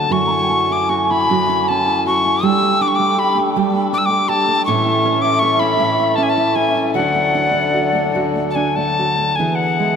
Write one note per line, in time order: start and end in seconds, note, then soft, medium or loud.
0.00 2.41 F#3 medium
0.00 0.30 A3 soft
0.00 0.19 D4 soft
0.00 4.63 A4 medium
0.00 0.14 A5 medium
0.09 1.29 F#2 medium
0.09 2.43 E4 medium
0.09 0.88 F#4 medium
0.09 0.27 G#5 medium
0.09 0.74 C#6 medium
0.26 0.69 E4 soft
0.26 0.32 A#5 medium
0.31 0.44 G#5 medium
0.43 0.49 G5 medium
0.48 1.68 C#4 soft
0.48 2.40 G#5 medium
0.71 1.10 E4 soft
0.71 0.91 D6 medium
0.89 1.29 F#4 medium
0.89 1.12 C#6 medium
1.11 1.48 E4 medium
1.11 1.70 B5 medium
1.30 2.52 F#2 medium
1.30 2.05 F#4 medium
1.49 1.86 E4 soft
1.68 2.53 C#4 medium
1.68 2.07 A5 medium
1.88 2.25 E4 soft
2.06 2.43 F#4 medium
2.06 2.46 C#6 medium
2.26 2.52 E4 medium
2.43 3.55 G3 medium
2.43 4.65 G3 medium
2.43 4.65 D4 medium
2.43 3.17 G4 medium
2.43 4.38 G5 loud
2.43 2.83 E6 medium
2.63 2.99 A3 soft
2.81 3.92 D4 medium
2.81 2.89 D6 medium
2.88 2.97 C#6 medium
2.95 3.21 D6 medium
3.00 3.37 A3 medium
3.18 3.55 G4 medium
3.18 3.38 B5 medium
3.38 3.73 A3 medium
3.56 4.74 G3 medium
3.56 4.28 G4 medium
3.73 4.10 A3 soft
3.93 4.74 D4 medium
3.93 4.00 D6 medium
3.98 4.07 E6 medium
4.06 4.30 D6 medium
4.10 4.48 A3 medium
4.29 4.66 G4 medium
4.29 4.65 A5 medium
4.48 4.86 A3 medium
4.65 5.79 A2 medium
4.65 6.92 E3 medium
4.65 6.92 C#4 medium
4.65 5.42 A4 medium
4.65 9.35 A4 medium
4.65 6.90 E5 loud
4.65 5.23 C#6 loud
4.86 5.22 E4 medium
5.05 6.16 C#4 medium
5.22 5.60 E4 medium
5.22 5.41 D6 medium
5.39 5.80 A4 medium
5.39 5.61 C#6 loud
5.60 5.98 E4 medium
5.60 6.17 B5 medium
5.80 7.02 A2 medium
5.80 6.55 A4 medium
6.00 6.36 E4 medium
6.16 7.02 C#4 medium
6.16 6.24 A5 medium
6.23 6.31 G#5 medium
6.30 6.57 A5 medium
6.38 6.74 E4 soft
6.55 6.95 A4 medium
6.55 6.94 G#5 medium
6.76 7.02 E4 medium
6.94 8.14 D2 medium
6.94 9.36 F#3 medium
6.94 9.36 D4 medium
6.94 7.73 F#4 medium
6.94 8.94 D5 medium
6.94 8.22 F#5 medium
7.15 7.52 A3 medium
7.35 8.55 D4 medium
7.53 7.94 A3 medium
7.74 8.15 F#4 medium
7.95 8.34 A3 soft
8.15 9.46 D2 medium
8.15 8.98 F#4 medium
8.36 8.76 A3 soft
8.50 8.57 A5 soft
8.55 9.46 D4 soft
8.55 8.77 G#5 medium
8.76 9.18 A3 soft
8.76 9.37 A5 medium
8.99 9.39 F#4 medium
9.20 9.47 A3 soft
9.36 9.96 E3 medium
9.36 9.96 B3 medium
9.36 9.96 E4 soft
9.36 9.96 G#4 medium
9.36 9.57 G#5 medium
9.55 9.96 F#5 medium
9.79 9.96 G#3 soft